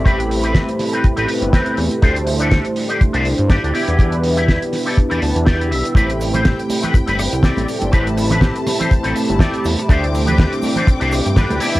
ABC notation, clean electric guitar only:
X:1
M:4/4
L:1/16
Q:"Swing 16ths" 1/4=122
K:Am
V:1 name="Clean electric guitar"
[CGB] z2 [CGB]2 z2 [CGB] z [CGB] z2 [CGB]2 z2 | [DGc] z2 [DGA]2 z2 [DGc] z [DGc] z2 [DGd]2 [EGd]2- | [EGd] z2 [EGe]2 z2 [EGA] z [EGd] a2 [EGdg]2 e2 | [CGB] z2 [CGc]2 z2 [CGB] z [CGB] z2 [CGd]2 z2 |
[CGB] z2 [CGB]2 z2 [CGc] z [CGA] z2 [CGd]2 z2 | [DGc] z2 [DGB]2 z2 [DGc] z [DGc] z2 [DGB]2 [EGd]2 |]